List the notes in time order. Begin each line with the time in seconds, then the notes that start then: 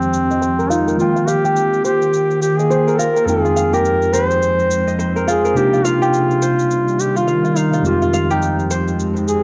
Already playing: F2 D#3 F3 G#3 C4 F4 G4 C5 G5
0.02 cabasa
0.14 cabasa
0.31 D#5, cabasa
0.42 C5, cabasa
0.59 A#4, cabasa
0.70 D#4 F4, cabasa
0.87 A#4, cabasa
0.97 D#3 A#3 F4 G5, cabasa
1.16 F4, cabasa
1.27 G4 F5, cabasa
1.45 A#3 G4, cabasa
1.56 cabasa
1.73 cabasa
1.84 G4 C5, cabasa
2.02 F4, cabasa
2.13 cabasa
2.31 cabasa
2.42 G4, cabasa
2.59 G#4 D#5, cabasa
2.70 C5, cabasa
2.88 A#4, cabasa
2.99 F4 A#4, cabasa
3.16 A#4, cabasa
3.26 F2 F3 G#3 C4 D#4 G#4 G5, cabasa
3.45 C4 F4, cabasa
3.56 F5, cabasa
3.73 G4 A#4, cabasa
3.85 cabasa
4.02 cabasa
4.13 C5, cabasa
4.31 G#3, cabasa
4.42 cabasa
4.59 cabasa
4.71 cabasa
4.87 D#5, cabasa
4.99 C5, cabasa
5.16 A#4, cabasa
5.28 F4 G#4, cabasa
5.45 A#4, cabasa
5.54 C3 A#3 D4 D#4 G4, cabasa
5.58 G4
5.73 F4, cabasa
5.85 F4 F5, cabasa
6.02 G3 G4, cabasa
6.14 cabasa
6.31 cabasa
6.42 C5, cabasa
6.59 D#3, cabasa
6.71 cabasa
6.88 cabasa
6.99 G4, cabasa
7.16 F4, cabasa
7.27 F5, cabasa
7.45 F4, cabasa
7.56 D#4 F5, cabasa
7.73 F4, cabasa
7.83 F2 F3 G#3 C4 D#4 F4 G4, cabasa
8.02 F4, cabasa
8.13 G#3 F5, cabasa
8.31 D#4 G4, cabasa
8.40 C4, cabasa
8.59 cabasa
8.71 C5, cabasa
8.77 G4
8.88 cabasa
8.99 cabasa
9.16 cabasa
9.27 G#4, cabasa